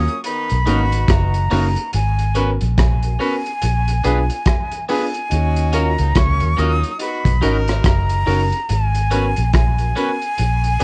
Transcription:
Already playing: F#3 A#3 C#4 D#6
0.08 closed hi-hat
0.24 D#3 B3 D#4 B5, closed hi-hat
0.49 B1, closed hi-hat
0.65 G#1 A#3 B3 C#4 D#4 F#4 A#4, closed hi-hat
0.92 closed hi-hat
1.08 F#1 A#5, kick, cross-stick, closed hi-hat
1.34 closed hi-hat
1.50 F#1 A#3 C#4 D#4 F#4 A#4, cross-stick, open hi-hat
1.76 closed hi-hat
1.93 G#1 G#5, closed hi-hat
2.19 closed hi-hat
2.35 B3 C#4 F#4 A#4 B4, closed hi-hat
2.61 A#1, closed hi-hat
2.78 G#5, kick, cross-stick, closed hi-hat
3.03 F#4 A#4, closed hi-hat
3.19 B3 C#4 F#4 A#4 B4, open hi-hat
3.46 closed hi-hat
3.62 A#1, closed hi-hat
3.88 closed hi-hat
4.04 B1 B3 D4 F4 G#4 B4, closed hi-hat
4.30 closed hi-hat
4.46 kick, cross-stick, closed hi-hat
4.72 closed hi-hat
4.89 B3 D4 F4 G#4 B4 G#5, open hi-hat
5.14 closed hi-hat
5.29 D#2 C#4 D#4 F#4, closed hi-hat
5.56 closed hi-hat
5.73 C#4 F4 F#4 A#4 A#5, closed hi-hat
5.97 C#2 F#3 A#3 D#4, closed hi-hat
6.15 C#2 F#3 A#3 C#4 C#6, kick, cross-stick, closed hi-hat
6.40 D#2 F#4 A#4, closed hi-hat
6.57 D#2 F#3 A#3 C#4 D#4 F4 F#4 A#4 D#6, closed hi-hat
6.83 closed hi-hat
6.98 B3 D#4 F#4 B5, closed hi-hat
7.25 B1, kick, closed hi-hat
7.41 G#1 C#4 D#4 F#4 A#4, closed hi-hat
7.68 cross-stick, closed hi-hat
7.84 F#1 A#5, kick, cross-stick, closed hi-hat
8.09 closed hi-hat
8.26 F#1 C#4 D#4 F#4 A#4, open hi-hat
8.52 closed hi-hat
8.69 G#1 G#5, closed hi-hat
8.95 closed hi-hat
9.11 B3 C#4 F#4 A#4 B4, closed hi-hat
9.36 A#1, closed hi-hat
9.53 G#5, kick, cross-stick, closed hi-hat
9.78 F#4 A#4, closed hi-hat
9.96 B3 C#4 F#4 A#4 B4, closed hi-hat
10.22 closed hi-hat
10.38 A#1, closed hi-hat
10.64 closed hi-hat
10.80 B3 D4 F4 G#4, closed hi-hat

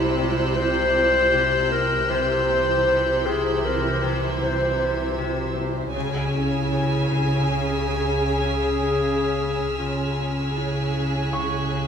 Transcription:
Already playing: C2 C3 G3 C4 E4 C5 E6 F#6 G6
0.18 C3
0.56 C3 C5
0.95 C3
1.33 C3
1.71 C4 A#4
2.09 C2 C3 E3 E4 C5
2.48 C4
2.87 C3
3.25 C3 G#4
3.64 C3 A#4
4.03 C3
4.10 G#6
4.41 C3 C5
4.80 C3
5.18 C3
5.56 C4
5.94 C#2 C#3 C#4 G#4 G#5 E6 F6 B6
6.33 C#4 E4
6.72 C#3
7.10 C#3
7.48 C#3 G#4
7.87 C#3
8.25 C#3 G#4
8.64 C#3
9.02 C#3
9.41 C#4
9.78 C#2 C#3 C#4 F4 G#4 G#5
10.18 C#4
10.56 C#3 E4
10.82 F#6
10.95 C#3
11.33 C#3 C#6
11.71 C#3

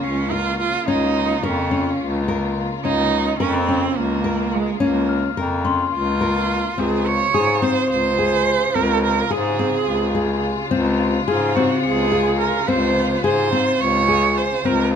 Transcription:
Already playing: C#3 A#3 C#4 F4
0.03 C#2 C#4 C7
0.31 F4 A#4
0.60 F4
0.87 C#2 C#4 D#4
1.43 F2 C#4 A#4
1.71 C#4
2.00 C#2
2.28 A#4
2.84 C#2 C#4 D#4
3.39 F2 C#4 A#4
3.54 C4
3.68 C#4
3.96 C#2 A#3
4.24 A#4
4.54 G#3
4.80 C#2 A#3 C#4
5.09 F6
5.37 F2 A#4
5.65 C#4 C6
5.94 C#2 F4
6.21 A#4
6.77 C#2 C3 C#3 C4 F4 G#4
7.06 C#5
7.34 G#2 G#4 D#6
7.62 C4 C5
7.90 C#2 C5
8.19 G#4
8.74 C#2 C4 A#4
9.04 A#4
9.30 G#2 G#4
9.59 C4
9.86 C#2
10.15 G#4
10.71 C#2 C4
11.28 G#2 F4 G#4
11.56 C4 F#4
11.83 C#2 G#4 C#7
12.12 G#4
12.40 A#4
12.68 C#2 C4 C5
13.24 G#2 G#4 C5
13.52 C4
13.80 C#2 C#5
14.08 G#4
14.37 C5
14.64 C#2 C4 A#4

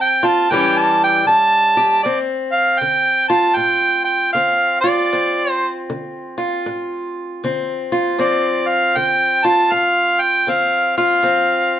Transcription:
Already playing: D3 C4
0.00 G5
0.23 F4 A5
0.51 A2 E3 G3 C#4 G4 G5
0.78 A5
1.04 G5
1.27 E3 A5
1.77 G4
2.03 D2 C4 D5
2.52 F5
2.79 D3 G5
3.28 F4 A5
3.55 A2 G5
4.04 G5
4.33 D3 C4 F5
4.81 F4 D5
5.13 D2 C4
5.51 C5
5.90 D3
6.38 F4
6.66 A2
7.44 D3 C4
7.92 F4
8.19 D2 C4 D5
8.68 F5
8.96 D3 G5
9.45 F4 A5
9.72 A2 F5
10.21 G5
10.47 D3 C4 F5
10.98 F4 F5
11.23 D2 C4

